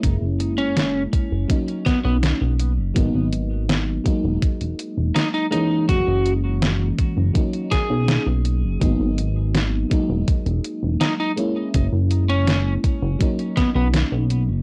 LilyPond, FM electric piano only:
\new Staff \with { instrumentName = "FM electric piano" } { \time 4/4 \key b \major \tempo 4 = 82 <gis ais cis' e'>2 <fis ais cis' dis'>2 | <fis ais b dis'>4. <fis gis ais dis'>2 <e gis ais cis'>8~ | <e gis ais cis'>2 <fis ais cis' dis'>2 | <fis ais b dis'>4. <fis gis ais dis'>2 <gis ais cis' e'>8~ |
<gis ais cis' e'>2 <fis ais cis' dis'>2 | }